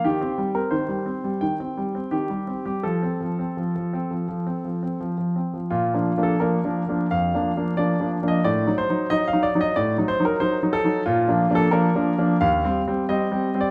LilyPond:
<<
  \new Staff \with { instrumentName = "Grand piano" } { \time 4/4 \key bes \major \tempo 4 = 88 g'8. bes'16 c''4 g''4 g'8. g'16 | a'2. r4 | f'8. a'16 bes'4 f''4 d''8. ees''16 | d''8 c''8 ees''16 f''16 d''16 ees''16 d''8 c''16 bes'16 c''8 a'8 |
f'8. a'16 bes'4 f''4 ees''8. d''16 | }
  \new Staff \with { instrumentName = "Grand piano" } { \time 4/4 \key bes \major ees16 c'16 g16 c'16 ees16 g16 c'16 g16 ees16 c'16 g16 c'16 ees16 g16 c'16 g16 | f16 c'16 f16 c'16 f16 f16 c'16 f16 f16 c'16 f16 c'16 f16 f16 c'16 f16 | \tuplet 3/2 { bes,8 <f bes d'>8 <f bes d'>8 <f bes d'>8 <f bes d'>8 <f bes d'>8 f,8 <f bes d'>8 <f bes d'>8 <f bes d'>8 <f bes d'>8 <f bes d'>8 } | \tuplet 3/2 { a,8 <fis ees'>8 <fis ees'>8 <fis ees'>8 <fis ees'>8 <fis ees'>8 a,8 <fis ees'>8 <fis ees'>8 <fis ees'>8 <fis ees'>8 <fis ees'>8 } |
\tuplet 3/2 { bes,8 <f bes d'>8 <f bes d'>8 <f bes d'>8 <f bes d'>8 <f bes d'>8 ees,8 <g c'>8 <g c'>8 <g c'>8 <g c'>8 <g c'>8 } | }
>>